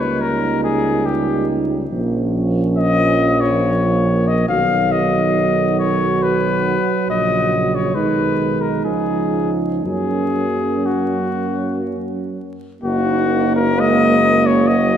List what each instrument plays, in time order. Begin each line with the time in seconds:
Already playing: tuba C#2, trombone G3, euphonium A#3, french horn section D#4
0.00 cornet B4
0.21 cornet A#4
0.64 cornet G#4
1.05 cornet G4
1.90 tuba A#1, trombone F3, euphonium A#3, french horn section C#4
2.77 cornet D#5
3.41 cornet C#5
4.27 cornet D#5
4.48 tuba B1, trombone D#3, euphonium F#3, french horn section F#4, cornet F5
4.91 cornet D#5
5.79 cornet C#5
6.23 cornet B4
7.08 tuba A#1, trombone C#3, cornet D#5
7.75 cornet C#5
7.94 tuba B1, trombone D#3, euphonium G#3, french horn section D#4, cornet B4
8.62 cornet A#4
8.84 tuba C#2, trombone F3, cornet G#4
9.83 tuba F#2, trombone F#3, euphonium A#3, french horn section C#4, cornet G#4
10.86 cornet F#4
12.82 tuba F#1, trombone A#3, euphonium A#3, french horn section D#4, cornet F#4
13.56 cornet A#4
13.79 euphonium G#3, french horn section C#4, cornet D#5
14.46 cornet C#5
14.67 euphonium F#3, french horn section F#4, cornet D#5